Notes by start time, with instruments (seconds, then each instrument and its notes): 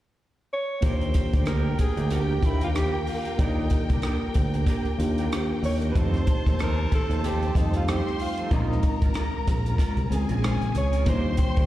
0.53 alto saxophone C#5
0.81 fingered electric bass D#2, tine electric piano A#3 D4 F4 G4, clean electric guitar A#3 D4 G4 A#4, string section A#4 G5, alto saxophone C5, kick, closed hi-hat
1.01 closed hi-hat
1.14 muted clean electric guitar stroke, kick, closed hi-hat
1.33 fingered electric bass D2, clean electric guitar A#3 D4 G4 A#4, kick, closed hi-hat
1.42 alto saxophone C5, closed hi-hat
1.46 clean electric guitar A#3 D4 G4 A#4, alto saxophone A#4, cross-stick
1.79 alto saxophone G#4, muted clean electric guitar stroke, kick, closed hi-hat
1.97 fingered electric bass D2, clean electric guitar A#3 D4 G4 A#4, closed hi-hat
2.10 clean electric guitar A#3 D4 G4 A#4, alto saxophone G4, closed hi-hat
2.41 fingered electric bass D#2, tine electric piano A#3 D4 F4 G4, kick, closed hi-hat
2.45 alto saxophone E4
2.61 clean electric guitar A#3 D4 G4 A#4, alto saxophone F4, closed hi-hat
2.74 clean electric guitar A#3 D4 G4 C5, alto saxophone G4, cross-stick, closed hi-hat
3.02 alto saxophone G4
3.07 alto saxophone F4, muted clean electric guitar stroke, open hi-hat
3.25 clean electric guitar A#3 D4 G4 A#4, closed hi-hat
3.38 fingered electric bass D#2, tine electric piano A#3 F4 A#4 D5, clean electric guitar A#3 D4 G4 A#4, alto saxophone D#4, kick, closed hi-hat
3.70 muted clean electric guitar stroke, kick, closed hi-hat
3.89 fingered electric bass C2, clean electric guitar A#3 D4 G4 A#4, kick, closed hi-hat
4.02 clean electric guitar A#3 D4 G4 A#4, cross-stick, closed hi-hat
4.34 fingered electric bass D2, muted clean electric guitar stroke, kick, closed hi-hat
4.54 clean electric guitar A#3 D4 G4 A#4, closed hi-hat
4.66 clean electric guitar A#3 D4 G4 A#4, kick, closed hi-hat
4.85 muted fingered electric bass stroke, closed hi-hat
4.97 fingered electric bass D#2, tine electric piano A#3 D4 F4 G4, muted clean electric guitar stroke, closed hi-hat
5.18 clean electric guitar A#3 D4 G4 A#4, closed hi-hat
5.31 clean electric guitar A#3 D4 G4 C5, cross-stick, closed hi-hat
5.63 fingered electric bass D#2, alto saxophone C#5, muted clean electric guitar stroke, open hi-hat
5.81 clean electric guitar A#3 D4 G4 A#4, closed hi-hat
5.91 fingered electric bass F2, clean electric guitar F3, tine electric piano A3 C4, alto saxophone B4, string section C5 A5
5.95 clean electric guitar C4 D#4 A4, tine electric piano D#4 G4, alto saxophone C5, kick, closed hi-hat
6.14 cross-stick, closed hi-hat
6.27 muted clean electric guitar stroke, kick, closed hi-hat
6.46 fingered electric bass D#2, clean electric guitar F3 C4 D#4 A4, kick, closed hi-hat
6.59 clean electric guitar F3 C4 D#4 A4, alto saxophone A#4, cross-stick, closed hi-hat
6.91 alto saxophone A4, muted clean electric guitar stroke, muted fingered electric bass stroke, kick, closed hi-hat
7.10 fingered electric bass D#2, clean electric guitar F3 C4 D#4 A4, closed hi-hat
7.23 clean electric guitar F3 C4 D#4 A4, alto saxophone G4, closed hi-hat
7.42 closed hi-hat
7.54 fingered electric bass F2, tine electric piano G3 C4 D#4 G4, alto saxophone D#4, muted clean electric guitar stroke, kick, closed hi-hat
7.60 tine electric piano A3
7.73 clean electric guitar F3 C4 D#4 A4, alto saxophone F4, closed hi-hat
7.87 clean electric guitar F3 C4 D#4 C5, alto saxophone G4, string section C5 C6, cross-stick, closed hi-hat
8.07 cross-stick
8.19 alto saxophone F4, muted clean electric guitar stroke, open hi-hat
8.37 clean electric guitar F3 C4 D#4 A4, closed hi-hat
8.50 fingered electric bass A#1, clean electric guitar G#3 C#4 F4 A#4, tine electric piano G#3 C4 C#4 F4, alto saxophone D#4, string section A#4 A#5, kick, closed hi-hat
8.72 cross-stick
8.82 muted clean electric guitar stroke, kick, closed hi-hat
9.01 fingered electric bass G#1, clean electric guitar G#3 C#4 F4 A#4, kick, closed hi-hat
9.14 clean electric guitar G#3 C#4 F4 A#4, cross-stick, closed hi-hat
9.47 fingered electric bass A#1, kick, closed hi-hat
9.65 clean electric guitar G#3 C#4 F4 A#4, closed hi-hat
9.78 clean electric guitar G#3 C#4 F4 A#4, kick, closed hi-hat
9.97 fingered electric bass C2, closed hi-hat
10.10 fingered electric bass C#2, tine electric piano G#3 C4 C#4 G#4, string section G#4 G#5, muted clean electric guitar stroke, closed hi-hat
10.29 fingered electric bass A#1, clean electric guitar G#3 C#4 F4 A#4, closed hi-hat
10.42 clean electric guitar G#3 C#4 F4 C5, cross-stick, closed hi-hat
10.61 fingered electric bass A#1, closed hi-hat
10.74 fingered electric bass C#2, alto saxophone C#5, muted clean electric guitar stroke, closed hi-hat
10.92 clean electric guitar G#3 C#4 F4 A#4, closed hi-hat
11.05 fingered electric bass D#2, tine electric piano G3 A#3 D4 F4, clean electric guitar A#3 D4 G4 A#4, string section C5 C6, kick, closed hi-hat
11.09 alto saxophone C5
11.37 celesta G5, muted clean electric guitar stroke, kick, closed hi-hat
11.56 fingered electric bass D2, clean electric guitar A#3 D4 G4 A#4, kick, closed hi-hat